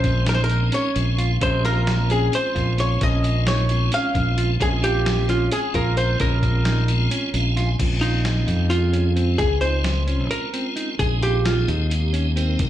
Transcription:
Already playing: fingered electric bass A#1, flugelhorn C5, hollow-body jazz guitar C5
0.04 tonewheel organ G#3 C4 C#4 F4, kick, snare, closed hi-hat
0.26 clean electric guitar D#4, hollow-body jazz guitar A#4, flugelhorn A#4, snare, closed hi-hat
0.34 hollow-body jazz guitar C5, flugelhorn C5
0.44 hollow-body jazz guitar A#4, flugelhorn A#4
0.49 tonewheel organ G#3 C4 C#4 D#4, closed hi-hat
0.72 clean electric guitar C#4, hollow-body jazz guitar C#5, flugelhorn C#5, closed hi-hat
0.95 fingered electric bass A#1, tonewheel organ G#3 C4 C#4 F4, closed hi-hat
1.18 clean electric guitar F4, closed hi-hat
1.41 fingered electric bass A#1, tonewheel organ G#3 C4 C#4 G4, clean electric guitar C#4, hollow-body jazz guitar C5, flugelhorn C5, kick, closed hi-hat
1.64 clean electric guitar F4, hollow-body jazz guitar A#4, flugelhorn A#4, snare, closed hi-hat
1.85 tonewheel organ G#3 C4 C#4 F4, snare, closed hi-hat
2.10 clean electric guitar C#4, hollow-body jazz guitar G#4, flugelhorn G#4, closed hi-hat
2.32 tonewheel organ G#3 C4 C#4 F4, hollow-body jazz guitar C5, flugelhorn C5, closed hi-hat
2.55 fingered electric bass A#1, clean electric guitar F4, kick, snare, closed hi-hat
2.77 tonewheel organ G#3 C4 C#4 F4, flugelhorn C#5, hollow-body jazz guitar C#5, closed hi-hat
3.01 fingered electric bass A#1, clean electric guitar C#4, hollow-body jazz guitar D#5, flugelhorn D#5, kick, closed hi-hat
3.23 tonewheel organ G#3 C4 C#4 F4, closed hi-hat
3.47 clean electric guitar D#4, hollow-body jazz guitar C#5, flugelhorn C#5, snare, closed hi-hat
3.69 tonewheel organ G#3 C4 C#4 F4, closed hi-hat
3.92 clean electric guitar C#4, hollow-body jazz guitar F5, flugelhorn F5, closed hi-hat
4.14 fingered electric bass A#1, tonewheel organ G#3 C4 C#4 F4, kick, closed hi-hat
4.38 clean electric guitar F4, closed hi-hat
4.60 fingered electric bass A#1, tonewheel organ G#3 C4 C#4 F4, clean electric guitar C#4, hollow-body jazz guitar G#4, flugelhorn G#4, kick, closed hi-hat
4.83 clean electric guitar F4, hollow-body jazz guitar G4, flugelhorn G4, closed hi-hat
5.05 tonewheel organ G#3 C4 C#4 F4, snare, closed hi-hat
5.29 clean electric guitar C#4, hollow-body jazz guitar F4, flugelhorn F4, snare, closed hi-hat
5.52 tonewheel organ G#3 C4 C#4 F4, hollow-body jazz guitar G#4, flugelhorn G#4, closed hi-hat
5.74 fingered electric bass A#1, clean electric guitar F4, hollow-body jazz guitar A#4, flugelhorn A#4, kick, closed hi-hat
5.97 tonewheel organ G#3 C4 C#4 F4, hollow-body jazz guitar C5, flugelhorn C5, closed hi-hat
6.20 fingered electric bass A#1, clean electric guitar C#4, hollow-body jazz guitar A#4, flugelhorn A#4, kick, closed hi-hat
6.43 tonewheel organ G#3 C4 C#4 F4, kick, closed hi-hat
6.65 clean electric guitar D#4, snare, closed hi-hat
6.88 tonewheel organ G#3 C4 C#4 F4, closed hi-hat
7.11 clean electric guitar C#4, closed hi-hat
7.34 fingered electric bass A#1, tonewheel organ G#3 C4 C#4 F4 F5, closed hi-hat
7.56 clean electric guitar F4, tonewheel organ G#5, snare, closed hi-hat
7.79 fingered electric bass A#1, tonewheel organ G#3 C4 C#4 F4, kick, closed hi-hat, crash
8.01 hollow-body jazz guitar D#4, clean electric guitar F4, closed hi-hat
8.25 tonewheel organ G#3 C4 C#4 F4, snare, closed hi-hat
8.47 fingered electric bass F2, clean electric guitar D#4, closed hi-hat
8.70 tonewheel organ G#3 C4 C#4 G#4, hollow-body jazz guitar F4, closed hi-hat
8.93 clean electric guitar C#4, closed hi-hat
9.16 tonewheel organ G#3 C4 C#4 F4, clean electric guitar C4, closed hi-hat
9.38 fingered electric bass C#2, hollow-body jazz guitar G#4, kick, closed hi-hat
9.61 tonewheel organ G#3 C4 C#4 F4, clean electric guitar D#4, hollow-body jazz guitar C5, closed hi-hat
9.84 snare, closed hi-hat
10.07 tonewheel organ G#3 C4 C#4 F4, clean electric guitar C#4, closed hi-hat
10.31 hollow-body jazz guitar A#4, closed hi-hat
10.53 tonewheel organ G#3 C4 C#4 F4, clean electric guitar C4, closed hi-hat
10.76 clean electric guitar D#4, closed hi-hat
10.99 fingered electric bass A#1, tonewheel organ G#3 C4 D#4 G#4, hollow-body jazz guitar G#4, kick, closed hi-hat
11.22 clean electric guitar F4, hollow-body jazz guitar G4, closed hi-hat
11.45 tonewheel organ G#3 C4 D#4 G#4, hollow-body jazz guitar F4, snare, closed hi-hat
11.68 fingered electric bass D#2, clean electric guitar D#4, closed hi-hat
11.90 tonewheel organ G#3 C4 D#4 G4, closed hi-hat
12.13 clean electric guitar C#4, closed hi-hat
12.36 tonewheel organ G#3 C4 D#4 A#4, clean electric guitar C4, closed hi-hat
12.59 fingered electric bass C2, kick, closed hi-hat

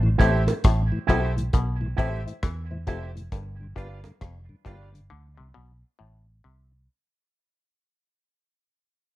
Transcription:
Already playing: fingered electric bass A1
0.03 tonewheel organ A2 E3
0.18 fingered electric bass A1, clav A2, tonewheel organ A3 C4 G4, clean electric guitar E4 G4 C5, upright piano G4 A4 C5 E5, kick, closed hi-hat
0.46 tonewheel organ A2 E3, closed hi-hat, high bongo
0.64 fingered electric bass A1, clav A2, kick, cross-stick, closed hi-hat
0.92 tonewheel organ A2 E3
1.07 fingered electric bass B1, clav B2, tonewheel organ A3 C4 G4, clean electric guitar E4 G4 C5, upright piano G4 A4 C5 E5, kick, closed hi-hat, high bongo, low bongo
1.36 tonewheel organ A2 E3, muted clean electric guitar stroke, closed hi-hat
1.53 fingered electric bass B1, clav B2, kick, closed hi-hat, high bongo
1.81 tonewheel organ A2 E3
1.97 fingered electric bass A1, clav A2, tonewheel organ A3 C4 G4, clean electric guitar E4 G4 C5, upright piano G4 A4 C5 E5, kick, closed hi-hat
2.26 tonewheel organ A2 E3, upright piano C5 E5, closed hi-hat
2.43 fingered electric bass E2, clav E3, kick, cross-stick, closed hi-hat, high bongo
2.71 tonewheel organ A2 E3, upright piano C5 E5
2.87 fingered electric bass F1, clav F2, tonewheel organ A3 C4 G4, clean electric guitar E4 G4 C5, upright piano G4 A4 C5 E5, kick, closed hi-hat, low bongo
3.16 tonewheel organ A2 E3, closed hi-hat
3.32 fingered electric bass G1, clav G2, kick, closed hi-hat, high bongo
3.61 tonewheel organ G2 D3
3.76 fingered electric bass G1, clav G2, tonewheel organ G3 B3 F4, clean electric guitar D4 F4 B4, upright piano G4 B4 D5 F5, kick, closed hi-hat
4.04 tonewheel organ G2 D3, closed hi-hat, high bongo
4.21 fingered electric bass F1, clav F2, kick, cross-stick, closed hi-hat
4.49 tonewheel organ G2 D3
4.65 fingered electric bass G1, clav G2, tonewheel organ G3 B3 F4, clean electric guitar D4 F4 B4, upright piano G4 B4 D5 F5, kick, closed hi-hat, high bongo, low bongo
4.93 tonewheel organ G2 D3, muted clean electric guitar stroke, closed hi-hat
5.10 fingered electric bass D2, clav D3
5.37 fingered electric bass C2, clav C3
5.54 fingered electric bass B1, clav B2
5.99 fingered electric bass A1, clav A2
6.44 fingered electric bass C2, clav C3

